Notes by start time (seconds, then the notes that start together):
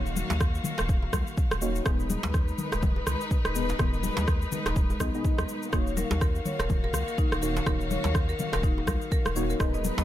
Already playing: D#1 D#3 A#3 D#4 F#4 C#5 F5
0.06 shaker
0.16 high conga, shaker
0.30 D#2, djembe slap, high conga, shaker
0.41 kick, cross-stick, mid tom, shaker
0.55 shaker
0.64 high conga, low conga, shaker
0.78 D#1, cross-stick, djembe slap, djembe tone, shaker
0.89 kick, shaker
1.03 djembe tone
1.13 C#2, kick, cross-stick, high conga, shaker
1.27 shaker
1.37 kick, shaker
1.51 D#1, cross-stick, high conga, shaker
1.62 A#3 D#4 F#4 C#5, shaker
1.76 shaker
1.85 D#1 G#3 B3 D#4 G#4 A#4 B4 D#5, kick, cross-stick, djembe tone, shaker
2.00 shaker
2.10 high conga, shaker
2.23 D#2, djembe slap, high conga, djembe tone, shaker
2.34 kick, cross-stick, mid tom, shaker
2.48 shaker
2.58 mid tom, high conga, shaker
2.72 D#1, cross-stick, djembe slap, djembe tone, shaker
2.83 kick, mid tom, high conga, shaker
2.96 djembe tone
3.07 C#2, cross-stick, low conga, shaker
3.21 shaker
3.31 kick, shaker
3.45 D#1, cross-stick, shaker
3.55 B3 D#4 G#4 D#5, shaker
3.69 djembe slap, shaker
3.79 D#1 B3 D#4 G#4 D#5, kick, cross-stick, djembe tone, low conga, shaker
3.93 shaker
4.03 high conga, shaker
4.17 D#2, djembe slap, high conga, djembe tone, shaker
4.28 kick, cross-stick, mid tom, shaker
4.42 shaker
4.52 high conga, low conga, shaker
4.66 D#1, cross-stick, djembe slap, djembe tone, shaker
4.76 kick, shaker
4.90 djembe tone, shaker
5.00 C#2 B3 D#4 G#4 D#5, kick, cross-stick, high conga, shaker
5.14 B3 D#4 G#4 D#5, shaker
5.25 kick, shaker
5.38 D#2, cross-stick, high conga, shaker
5.49 shaker
5.63 shaker
5.73 D#1 D#3 A#3 D#4 F#4 C#5 F5, kick, cross-stick, djembe tone, shaker
5.87 shaker
5.97 A#4, high conga, shaker
6.11 D#2, djembe slap, djembe tone, high conga, shaker
6.21 A#4, kick, cross-stick, mid tom, shaker
6.35 shaker
6.45 C#5, mid tom, high conga, shaker
6.60 D#1 A#4, cross-stick, djembe slap, djembe tone, shaker
6.70 kick, mid tom, high conga, shaker
6.84 A#4, djembe tone
6.93 C#2, cross-stick, low conga, shaker
7.08 A#4, shaker
7.18 D#4, kick, shaker
7.32 D#1, cross-stick, shaker
7.42 A#3 D#4 F#4 A#4 C#5, shaker
7.57 djembe slap, shaker
7.66 D#1 A#3 D#4 F#4 A#4 C#5, kick, cross-stick, djembe tone, low conga, shaker
7.81 shaker
7.91 C#5, high conga, shaker
8.04 D#2 A#4, djembe slap, high conga, shaker
8.15 kick, cross-stick, mid tom, shaker
8.29 A#4, shaker
8.39 high conga, low conga, shaker
8.53 D#1 A#4, cross-stick, djembe slap, djembe tone, shaker
8.63 D#4, kick, shaker
8.78 djembe tone
8.87 C#2 A#4, kick, cross-stick, high conga, shaker
9.02 shaker
9.12 A#4, kick, shaker
9.25 D#1, cross-stick, high conga, shaker
9.36 A#3 D#4 F#4 C#5, shaker
9.50 A#4, shaker
9.60 D#1 G#3 B3 D#4 G#4 A#4 B4 D#5, kick, cross-stick, djembe tone, shaker
9.74 D#5, shaker
9.84 high conga, shaker
9.98 D#2 D#5, djembe slap, djembe tone, high conga, shaker